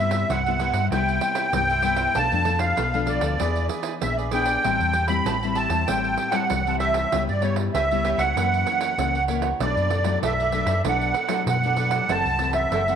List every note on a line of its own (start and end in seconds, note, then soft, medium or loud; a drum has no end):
0.00 0.23 G2 medium
0.00 0.27 C3 medium
0.00 0.27 G3 medium
0.00 0.28 B3 medium
0.00 0.28 E4 medium
0.00 0.28 E4 soft
0.00 0.29 B4 soft
0.00 0.28 C5 soft
0.00 0.29 E5 medium
0.00 0.32 E5 loud
0.11 pandeiro medium
0.29 0.69 C2 medium
0.29 0.89 G2 medium
0.29 0.40 E4 medium
0.29 0.40 B4 medium
0.29 0.40 C5 medium
0.29 0.40 E5 medium
0.29 0.88 F#5 medium
0.29 pandeiro medium
0.46 0.57 G3 medium
0.46 0.57 B3 medium
0.46 0.57 E4 medium
0.46 0.60 B4 soft
0.46 0.59 C5 soft
0.46 0.60 E5 soft
0.46 pandeiro soft
0.59 0.79 G3 medium
0.59 0.79 B3 medium
0.59 0.74 E4 medium
0.59 0.79 E4 medium
0.59 0.74 B4 medium
0.59 0.74 C5 medium
0.59 0.73 E5 medium
0.59 pandeiro medium
0.72 0.87 G2 medium
0.72 0.90 B4 soft
0.72 0.90 C5 soft
0.72 0.89 E5 medium
0.72 pandeiro medium
0.91 1.17 C2 loud
0.91 1.51 C3 soft
0.91 1.49 G3 medium
0.91 1.49 B3 medium
0.91 1.20 E4 medium
0.91 1.49 E4 medium
0.91 1.21 B4 medium
0.91 1.21 C5 medium
0.91 1.22 E5 medium
0.91 1.53 G5 medium
0.91 pandeiro medium
1.08 pandeiro soft
1.21 1.34 E4 soft
1.21 1.35 B4 soft
1.21 1.35 C5 medium
1.21 1.35 E5 medium
1.21 pandeiro medium
1.35 1.46 E4 medium
1.35 1.46 B4 medium
1.35 1.46 C5 medium
1.35 1.46 E5 medium
1.35 pandeiro medium
1.53 2.06 C2 medium
1.53 2.13 G2 medium
1.53 1.72 G3 medium
1.53 1.72 B3 medium
1.53 1.72 E4 medium
1.53 2.18 G5 loud
1.53 pandeiro medium
1.70 1.84 B4 soft
1.70 1.83 C5 soft
1.70 1.84 E5 medium
1.70 pandeiro soft
1.82 2.12 G3 medium
1.82 2.12 B3 medium
1.82 1.98 E4 medium
1.82 2.13 E4 medium
1.82 1.96 B4 medium
1.82 1.97 C5 medium
1.82 1.95 E5 medium
1.82 pandeiro medium
1.96 2.13 B4 soft
1.96 2.13 C5 soft
1.96 2.12 E5 soft
1.96 pandeiro medium
2.15 2.29 B1 medium
2.15 2.75 B2 soft
2.15 2.26 F3 soft
2.15 2.26 A3 soft
2.15 2.43 D4 medium
2.15 2.27 D4 soft
2.15 2.43 A4 medium
2.15 2.44 B4 medium
2.15 2.44 F5 medium
2.15 2.59 A5 loud
2.15 pandeiro medium
2.32 2.71 F2 medium
2.32 2.42 F3 medium
2.32 2.43 A3 medium
2.32 2.43 D4 medium
2.32 pandeiro soft
2.44 2.75 F3 medium
2.44 2.75 A3 soft
2.44 2.75 D4 soft
2.44 2.76 D4 medium
2.44 2.75 A4 soft
2.44 2.75 B4 soft
2.44 2.76 F5 medium
2.44 pandeiro medium
2.59 3.09 F5 medium
2.59 pandeiro medium
2.76 3.17 B1 medium
2.76 3.37 B2 medium
2.76 2.86 D4 medium
2.76 2.86 A4 medium
2.76 2.86 B4 medium
2.76 2.86 F5 medium
2.76 pandeiro medium
2.92 3.35 F3 medium
2.92 3.35 A3 medium
2.92 3.36 D4 medium
2.92 3.05 A4 soft
2.92 3.06 B4 soft
2.92 3.06 F5 soft
2.92 pandeiro soft
3.06 3.22 D4 medium
3.06 3.21 A4 medium
3.06 3.20 B4 medium
3.06 3.67 D5 medium
3.06 3.19 F5 medium
3.06 pandeiro medium
3.20 3.36 D2 medium
3.20 3.37 A4 soft
3.20 3.37 B4 soft
3.20 3.37 F5 medium
3.20 pandeiro medium
3.38 3.67 E2 loud
3.38 3.99 E3 medium
3.38 3.80 B3 medium
3.38 3.80 D4 medium
3.38 3.67 E4 medium
3.38 3.68 G#4 medium
3.38 3.80 G#4 medium
3.38 3.69 B4 medium
3.38 3.69 D5 medium
3.38 pandeiro medium
3.56 pandeiro soft
3.69 3.81 E4 soft
3.69 3.82 G#4 soft
3.69 3.82 B4 soft
3.69 3.82 D5 medium
3.69 pandeiro medium
3.83 3.93 E4 medium
3.83 3.94 G#4 medium
3.83 3.94 B4 medium
3.83 3.94 D5 medium
3.83 pandeiro medium
4.01 4.55 A#1 medium
4.01 4.29 B3 medium
4.01 4.29 D4 medium
4.01 4.29 G#4 medium
4.01 4.17 E5 medium
4.01 pandeiro medium
4.17 4.31 G#4 soft
4.17 4.31 B4 soft
4.17 4.31 D5 soft
4.17 pandeiro soft
4.31 4.61 B3 medium
4.31 4.62 D4 medium
4.31 4.46 E4 medium
4.31 4.47 G#4 medium
4.31 4.62 G#4 medium
4.31 4.46 B4 medium
4.31 4.44 D5 medium
4.31 5.06 G5 loud
4.31 pandeiro medium
4.45 4.62 G#4 soft
4.45 4.62 B4 soft
4.45 4.61 D5 medium
4.45 pandeiro medium
4.63 4.77 A1 medium
4.63 5.23 A2 soft
4.63 4.94 G3 medium
4.63 4.94 C4 medium
4.63 4.94 E4 medium
4.63 4.92 G4 medium
4.63 4.93 C5 medium
4.63 4.93 E5 medium
4.63 4.94 A5 medium
4.63 pandeiro medium
4.80 5.19 E2 medium
4.80 pandeiro soft
4.93 5.24 G4 medium
4.93 5.24 C5 soft
4.93 5.25 E5 medium
4.93 5.25 A5 medium
4.93 pandeiro medium
5.08 5.36 G3 medium
5.08 5.36 C4 medium
5.08 5.36 E4 medium
5.08 5.57 B5 medium
5.08 pandeiro medium
5.25 5.65 A1 medium
5.25 5.85 E3 medium
5.25 5.35 G4 medium
5.25 5.35 C5 medium
5.25 5.35 E5 medium
5.25 5.35 A5 medium
5.25 pandeiro medium
5.42 5.68 G3 medium
5.42 5.69 C4 medium
5.42 5.69 E4 medium
5.42 5.55 C5 soft
5.42 5.55 E5 soft
5.42 5.56 A5 soft
5.42 pandeiro soft
5.55 5.71 G4 medium
5.55 5.71 C5 medium
5.55 5.70 E5 medium
5.55 5.88 A5 loud
5.55 5.69 A5 medium
5.55 pandeiro medium
5.69 5.84 E2 medium
5.69 5.82 G3 medium
5.69 5.82 C4 medium
5.69 5.82 E4 medium
5.69 5.87 C5 soft
5.69 5.86 E5 soft
5.69 5.86 A5 medium
5.69 pandeiro medium
5.87 6.14 A1 loud
5.87 6.47 A2 medium
5.87 6.30 G3 medium
5.87 6.30 C4 medium
5.87 6.30 E4 medium
5.87 6.17 G4 medium
5.87 6.17 C5 medium
5.87 6.18 E5 medium
5.87 6.36 G5 medium
5.87 6.18 A5 medium
5.87 pandeiro medium
6.04 pandeiro soft
6.17 6.31 G4 soft
6.17 6.32 C5 soft
6.17 6.32 E5 medium
6.17 6.33 A5 medium
6.17 pandeiro medium
6.31 6.59 G3 medium
6.31 6.60 C4 medium
6.31 6.60 E4 medium
6.31 6.43 G4 medium
6.31 6.43 C5 medium
6.31 6.43 E5 medium
6.31 6.76 F#5 medium
6.31 6.43 A5 medium
6.31 pandeiro medium
6.50 7.03 C2 medium
6.50 7.09 E3 medium
6.50 pandeiro medium
6.66 7.08 G3 medium
6.66 7.08 C4 medium
6.66 7.08 E4 medium
6.66 6.80 C5 soft
6.66 6.81 E5 soft
6.66 6.81 A5 soft
6.66 pandeiro soft
6.79 6.95 G4 medium
6.79 6.95 C5 medium
6.79 7.23 E5 loud
6.79 6.94 E5 medium
6.79 6.93 A5 medium
6.79 pandeiro medium
6.94 7.11 C5 soft
6.94 7.10 E5 soft
6.94 7.10 A5 medium
6.94 pandeiro medium
7.12 7.26 C#2 medium
7.12 7.72 C#3 medium
7.12 7.31 G3 soft
7.12 7.31 B3 medium
7.12 7.31 E4 medium
7.12 7.42 G4 medium
7.12 7.43 B4 medium
7.12 7.43 C#5 medium
7.12 7.44 E5 medium
7.12 pandeiro medium
7.29 7.68 G2 medium
7.29 7.44 D5 medium
7.29 pandeiro soft
7.40 7.84 G3 medium
7.40 7.85 B3 soft
7.40 7.85 E4 medium
7.40 7.73 G4 soft
7.40 7.73 B4 medium
7.40 7.55 C#5 medium
7.40 pandeiro medium
7.45 7.74 C#5 medium
7.45 7.74 E5 medium
7.56 pandeiro medium
7.74 8.14 C#2 medium
7.74 8.33 C#3 medium
7.74 7.84 G4 medium
7.74 7.84 B4 medium
7.74 7.84 C#5 medium
7.74 8.22 E5 loud
7.74 7.84 E5 medium
7.74 pandeiro medium
7.91 8.32 G3 medium
7.91 8.32 B3 medium
7.91 8.32 E4 medium
7.91 8.05 B4 soft
7.91 8.05 C#5 soft
7.91 8.05 E5 soft
7.91 pandeiro soft
8.05 8.20 G4 medium
8.05 8.20 B4 medium
8.05 8.19 C#5 medium
8.05 8.18 E5 medium
8.05 pandeiro medium
8.18 8.32 C#2 medium
8.18 8.35 B4 soft
8.18 8.35 C#5 soft
8.18 8.34 E5 medium
8.18 9.24 F#5 medium
8.18 pandeiro medium
8.36 8.63 F#2 loud
8.36 8.96 F#2 medium
8.36 8.94 E3 medium
8.36 8.94 A#3 medium
8.36 8.94 C#4 medium
8.36 8.65 E4 medium
8.36 8.66 A#4 medium
8.36 8.66 C#5 medium
8.36 8.66 F#5 medium
8.36 pandeiro medium
8.53 pandeiro soft
8.66 8.80 E4 soft
8.66 8.80 A#4 soft
8.66 8.80 C#5 medium
8.66 8.81 F#5 soft
8.66 pandeiro medium
8.81 8.91 E4 medium
8.81 8.91 A#4 medium
8.81 8.91 C#5 medium
8.81 8.92 F#5 medium
8.81 pandeiro medium
8.98 9.51 C#2 medium
8.98 9.57 C#3 medium
8.98 9.17 E3 medium
8.98 9.17 A#3 medium
8.98 9.17 C#4 medium
8.98 pandeiro medium
9.15 9.28 A#4 soft
9.15 9.29 C#5 soft
9.15 9.29 F#5 soft
9.15 pandeiro soft
9.28 9.49 E3 soft
9.28 9.49 A#3 medium
9.28 9.49 C#4 medium
9.28 9.44 E4 medium
9.28 9.43 A#4 medium
9.28 9.42 C#5 medium
9.28 9.42 F#5 medium
9.28 pandeiro medium
9.42 9.59 A#4 soft
9.42 9.59 C#5 soft
9.42 9.58 F#5 medium
9.42 pandeiro medium
9.60 9.73 B1 medium
9.60 10.20 B2 medium
9.60 9.90 F#3 soft
9.60 9.90 A3 medium
9.60 9.90 D4 medium
9.60 9.91 D4 medium
9.60 9.90 A4 medium
9.60 9.91 B4 medium
9.60 10.19 D5 medium
9.60 9.91 D5 medium
9.60 pandeiro medium
9.76 10.16 F#2 medium
9.76 pandeiro soft
9.90 10.21 D4 soft
9.90 10.21 A4 soft
9.90 10.22 B4 soft
9.90 10.22 D5 medium
9.90 pandeiro medium
10.04 10.48 F#3 medium
10.04 10.48 A3 medium
10.04 10.48 D4 medium
10.04 pandeiro medium
10.23 10.62 B1 medium
10.23 10.82 F#2 soft
10.23 10.32 D4 medium
10.23 10.32 A4 medium
10.23 10.33 B4 medium
10.23 10.33 D5 medium
10.23 10.82 E5 medium
10.23 pandeiro medium
10.40 10.53 A4 soft
10.40 10.54 B4 soft
10.40 10.54 D5 soft
10.40 pandeiro soft
10.52 10.72 F#3 medium
10.52 10.72 A3 medium
10.52 10.68 D4 medium
10.52 10.72 D4 medium
10.52 10.68 A4 medium
10.52 10.67 B4 medium
10.52 10.65 D5 medium
10.52 pandeiro medium
10.66 10.81 F#2 medium
10.66 10.83 A4 soft
10.66 10.83 B4 soft
10.66 10.82 D5 medium
10.66 pandeiro medium
10.84 11.11 B1 loud
10.84 11.44 B2 medium
10.84 11.14 F#3 soft
10.84 11.14 A3 medium
10.84 11.14 D4 medium
10.84 11.15 D4 medium
10.84 11.15 A4 medium
10.84 11.15 B4 medium
10.84 11.15 D5 medium
10.84 pandeiro medium
10.88 11.45 F#5 medium
11.01 pandeiro soft
11.14 11.29 D4 soft
11.14 11.29 A4 soft
11.14 11.29 B4 medium
11.14 11.30 D5 medium
11.14 pandeiro medium
11.28 11.56 F#3 medium
11.28 11.56 A3 medium
11.28 11.57 D4 medium
11.28 11.40 D4 medium
11.28 11.40 A4 medium
11.28 11.40 B4 medium
11.28 11.40 D5 medium
11.28 pandeiro medium
11.46 12.06 F#2 medium
11.46 11.99 B2 medium
11.46 12.12 F#5 loud
11.46 pandeiro medium
11.63 12.04 F#3 medium
11.63 12.04 A3 medium
11.63 12.05 D4 medium
11.63 11.77 A4 soft
11.63 11.78 B4 soft
11.63 11.78 D5 medium
11.63 pandeiro soft
11.76 11.92 D4 medium
11.76 11.92 A4 medium
11.76 11.92 B4 medium
11.76 11.91 D5 medium
11.76 pandeiro medium
11.91 12.08 A4 soft
11.91 12.08 B4 soft
11.91 12.07 D5 medium
11.91 pandeiro medium
12.08 12.22 F#1 medium
12.08 12.68 F#2 soft
12.08 12.27 E3 soft
12.08 12.27 A3 medium
12.08 12.28 C4 medium
12.08 12.39 E4 medium
12.08 12.40 A4 medium
12.08 12.40 C5 medium
12.08 12.40 F#5 medium
12.08 12.53 A5 loud
12.08 pandeiro medium
12.25 12.64 C2 medium
12.25 pandeiro soft
12.39 12.81 E3 medium
12.39 12.81 A3 medium
12.39 12.81 C4 medium
12.39 12.70 E4 soft
12.39 12.70 A4 soft
12.39 12.71 C5 soft
12.39 12.71 F#5 medium
12.39 pandeiro medium
12.53 12.95 E5 medium
12.53 pandeiro medium
12.71 12.95 F#1 medium
12.71 12.95 F#2 soft
12.71 12.81 E4 medium
12.71 12.81 A4 medium
12.71 12.82 C5 medium
12.71 12.82 F#5 medium
12.71 pandeiro medium
12.88 12.95 E3 medium
12.88 12.95 A3 medium
12.88 12.95 C4 medium
12.88 12.95 A4 soft
12.88 12.95 C5 soft
12.88 12.95 F#5 soft
12.88 pandeiro soft